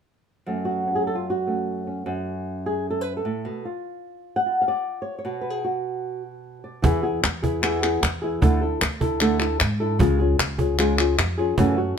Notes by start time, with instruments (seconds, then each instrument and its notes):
0.46 nylon-string guitar F#2 F#3 A3 C#4
0.65 nylon-string guitar F#4
0.87 nylon-string guitar C#4
0.95 nylon-string guitar G#4
1.07 nylon-string guitar A4
1.15 nylon-string guitar F4
1.30 nylon-string guitar F#4
1.47 nylon-string guitar A3 C#4
1.87 nylon-string guitar C#4
2.06 nylon-string guitar F#2 C#4
2.66 nylon-string guitar G#4
2.90 nylon-string guitar A4
3.01 nylon-string guitar B4
3.17 nylon-string guitar A4
3.25 nylon-string guitar A2
3.45 nylon-string guitar B2
3.65 nylon-string guitar F4
4.36 nylon-string guitar F#5
4.46 nylon-string guitar F4
4.62 nylon-string guitar F5
4.68 nylon-string guitar D5
5.02 nylon-string guitar C#5
5.19 nylon-string guitar C#5
5.25 nylon-string guitar B2 F#4
5.41 nylon-string guitar B4
5.50 nylon-string guitar G#4
5.64 nylon-string guitar F#4
6.64 nylon-string guitar D5
6.82 upright bass E2, nylon-string guitar E3 B3 E4 G#4, cajon bass
7.03 nylon-string guitar B3 E4 G#4, cajon slap
7.23 upright bass E2, muted nylon-string guitar stroke, cajon slap, clap
7.42 nylon-string guitar B3 E4 G#4, cajon bass
7.62 nylon-string guitar E3 B3 E4 G#4, clap
7.83 nylon-string guitar B3 E4 G#4, clap
8.02 upright bass E2, muted nylon-string guitar stroke, cajon slap, clap
8.22 nylon-string guitar B3 E4 G#4
8.41 upright bass D2, nylon-string guitar D3 A3 D4 E4 A4, cajon bass
8.61 nylon-string guitar D4 E4 A4
8.81 upright bass D2, muted nylon-string guitar stroke, cajon slap, clap
9.01 nylon-string guitar D4 E4 A4, cajon bass
9.20 nylon-string guitar D3 A3 D4 E4 A4, clap
9.40 nylon-string guitar D4 E4 A4, clap
9.60 upright bass G#2, muted nylon-string guitar stroke, cajon bass, cajon slap, clap
9.80 nylon-string guitar D4 E4 A4, cajon slap
9.99 upright bass C#2, nylon-string guitar C#3 G#3 C#4 F4 G#4, cajon bass
10.19 nylon-string guitar C#4 F4 G#4, cajon slap
10.38 upright bass C#2, muted nylon-string guitar stroke, cajon slap, clap
10.58 nylon-string guitar C#4 F4 G#4, cajon bass
10.78 nylon-string guitar C#3 G#3 C#4 F4 G#4, clap
10.98 nylon-string guitar C#4 F4 G#4, clap
11.18 upright bass F2, muted nylon-string guitar stroke, cajon slap, clap
11.38 nylon-string guitar C#4 F4 G#4, cajon slap
11.58 upright bass F#2, nylon-string guitar C#3 E3 A3 C#4 F#4, cajon bass
11.78 nylon-string guitar A3 C#4 F#4